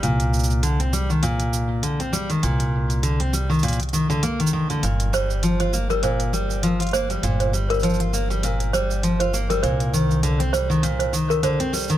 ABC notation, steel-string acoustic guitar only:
X:1
M:4/4
L:1/16
Q:"Swing 16ths" 1/4=100
K:Cm
V:1 name="Steel-string acoustic guitar" clef=bass
B,,4 D, C G, E, B,,4 D, C G, E, | B,,4 D, C G, E, B,, z E, D, B, E, E, D, | B,,2 G,2 F, F B, G, B,,2 G,2 F, F B, G, | B,,2 G,2 F, F B, G, B,,2 G,2 F, F B, G, |
B,,2 E,2 D, C G, E, B,,2 E,2 D, C G, E, |]